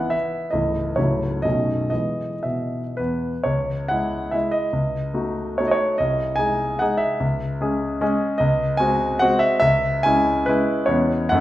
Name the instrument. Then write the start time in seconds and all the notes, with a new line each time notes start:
grand piano
Already playing: G#1 G#2 E3 B3 E4 F#5 G#5
0.10 E5
0.51 C#1 C#2 E3 A3 E4 D#5
0.96 C#1 C#2 F#3 A3 E4 C#5
1.42 B0 B1 F#3 A3 C#4 D#5
1.90 E3 G#3 B3 D#5
2.43 B2 E5
2.97 E2 B4
3.44 C#2 C#5
3.88 G#3 E4 F#5
4.31 G#3 E4 E5
4.51 D#5
4.73 C#2
5.14 A3 D#4 F#4
5.58 A3 D#4 F#4 C#5
5.68 C#5 D#5
5.98 C2 D#5
6.36 G#3 D#4 G#4 G#5
6.79 G#3 D#4 G#4 F#5
6.97 E5
7.20 C#2
7.61 G#3 C#4 G#4
8.01 G#3 C#4 G#4
8.38 C#2 D#5
8.77 G#3 C4 F#4 G#5
9.19 G#3 C4 F#4 F#5
9.39 E5
9.60 C#2 E5
10.03 G#3 C#4 E4 G#5
10.46 G#3 C#4 E4 B4
10.86 E2 G#3 C#4 E4 C#5
11.29 F#2 A3 C#4 D#4 F#5